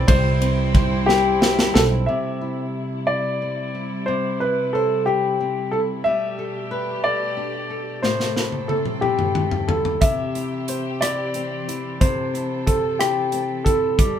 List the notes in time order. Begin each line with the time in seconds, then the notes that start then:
Already playing: E3 C4 E4 D5
0.07 C2 G3 C4 E4 C5, kick, ride
0.42 G3 C4, ride
0.75 C4 C5, kick, ride
1.06 G3 E4 G4, snare
1.41 E4 C5, snare
1.59 snare
1.74 B1 C4 E4 A4, snare
2.06 C3 G3 E4 E5
2.41 E4
3.07 E4 D5
3.42 C4
3.75 E4
4.06 C3 C5
4.40 E4 B4
4.73 A4 C5
5.06 E4 G4
5.40 C4
5.71 E4 A4
6.04 B2 G3 A3 G4 E5
6.39 A4
6.71 B4
7.04 A4 D5
7.37 D4
7.70 A4
8.02 A2 C3 C4 A4 C5, snare
8.20 snare
8.36 E4, snare
8.52 high tom
8.68 A4, high tom
8.86 mid tom
9.01 E4 G4, mid tom
9.19 mid tom
9.35 C4, mid tom
9.51 floor tom
9.68 E4 A4, floor tom
9.85 floor tom
10.01 C3 E3 C4 G4 E5, kick, closed hi-hat
10.35 E4, closed hi-hat
10.68 C5, closed hi-hat
11.01 E4 D5, cross-stick, closed hi-hat
11.34 C4, closed hi-hat
11.68 E4, closed hi-hat
12.01 C3 A4 C5, kick, closed hi-hat
12.34 E4, closed hi-hat
12.67 A4 C5, kick, closed hi-hat
12.99 E4 G4, cross-stick, closed hi-hat
13.32 C4, closed hi-hat
13.64 E4 A4, kick, closed hi-hat
13.98 B2 G3 A4, kick, closed hi-hat